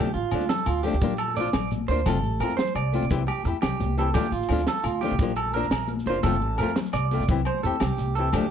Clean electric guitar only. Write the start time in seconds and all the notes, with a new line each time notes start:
Already playing: G4
0.14 F4
0.49 A4
0.66 F4
0.83 G4
1.18 A4
1.37 D5
1.88 C5
2.07 A4
2.40 A#4
2.57 C5
2.76 D5
3.28 G4
3.45 muted clean electric guitar stroke
3.62 G4
3.99 A4
4.14 G4
4.32 F4
4.68 A4
4.84 F4
5.01 G4
5.36 A4
5.54 A#4
6.07 C5
6.23 A4
6.59 A#4
6.76 muted clean electric guitar stroke
6.93 D5
7.47 C5
7.63 A4
7.80 G4
8.15 A4
8.34 G4